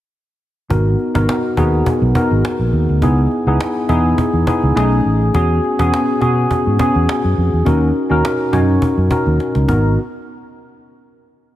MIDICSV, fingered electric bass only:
0, 0, Header, 1, 2, 480
1, 0, Start_track
1, 0, Key_signature, 5, "minor"
1, 0, Tempo, 579710
1, 583, Time_signature, 4, 2, 24, 8
1, 9570, End_track
2, 0, Start_track
2, 0, Title_t, "Fingered electric bass"
2, 0, Program_c, 0, 33
2, 585, Note_on_c, 0, 32, 92
2, 779, Note_off_c, 0, 32, 0
2, 957, Note_on_c, 0, 32, 85
2, 1045, Note_off_c, 0, 32, 0
2, 1302, Note_on_c, 0, 39, 75
2, 1498, Note_off_c, 0, 39, 0
2, 1669, Note_on_c, 0, 35, 83
2, 1760, Note_off_c, 0, 35, 0
2, 1911, Note_on_c, 0, 32, 92
2, 2001, Note_off_c, 0, 32, 0
2, 2145, Note_on_c, 0, 34, 64
2, 2238, Note_off_c, 0, 34, 0
2, 2260, Note_on_c, 0, 39, 90
2, 2366, Note_off_c, 0, 39, 0
2, 2393, Note_on_c, 0, 38, 87
2, 2503, Note_off_c, 0, 38, 0
2, 2503, Note_on_c, 0, 37, 104
2, 2698, Note_off_c, 0, 37, 0
2, 2869, Note_on_c, 0, 37, 90
2, 2960, Note_off_c, 0, 37, 0
2, 3223, Note_on_c, 0, 40, 76
2, 3418, Note_off_c, 0, 40, 0
2, 3589, Note_on_c, 0, 40, 75
2, 3680, Note_off_c, 0, 40, 0
2, 3836, Note_on_c, 0, 37, 83
2, 3925, Note_off_c, 0, 37, 0
2, 3943, Note_on_c, 0, 35, 100
2, 4139, Note_off_c, 0, 35, 0
2, 4184, Note_on_c, 0, 33, 69
2, 4380, Note_off_c, 0, 33, 0
2, 4427, Note_on_c, 0, 40, 107
2, 4621, Note_off_c, 0, 40, 0
2, 4797, Note_on_c, 0, 40, 98
2, 4886, Note_off_c, 0, 40, 0
2, 5146, Note_on_c, 0, 47, 81
2, 5341, Note_off_c, 0, 47, 0
2, 5520, Note_on_c, 0, 44, 76
2, 5608, Note_off_c, 0, 44, 0
2, 5760, Note_on_c, 0, 40, 87
2, 5847, Note_off_c, 0, 40, 0
2, 5997, Note_on_c, 0, 42, 76
2, 6086, Note_off_c, 0, 42, 0
2, 6108, Note_on_c, 0, 41, 81
2, 6212, Note_off_c, 0, 41, 0
2, 6235, Note_on_c, 0, 40, 81
2, 6325, Note_off_c, 0, 40, 0
2, 6347, Note_on_c, 0, 39, 108
2, 6541, Note_off_c, 0, 39, 0
2, 6710, Note_on_c, 0, 39, 80
2, 6801, Note_off_c, 0, 39, 0
2, 7063, Note_on_c, 0, 42, 77
2, 7259, Note_off_c, 0, 42, 0
2, 7430, Note_on_c, 0, 42, 75
2, 7521, Note_off_c, 0, 42, 0
2, 7672, Note_on_c, 0, 39, 78
2, 7762, Note_off_c, 0, 39, 0
2, 7910, Note_on_c, 0, 37, 70
2, 8001, Note_off_c, 0, 37, 0
2, 8021, Note_on_c, 0, 32, 82
2, 8245, Note_off_c, 0, 32, 0
2, 9570, End_track
0, 0, End_of_file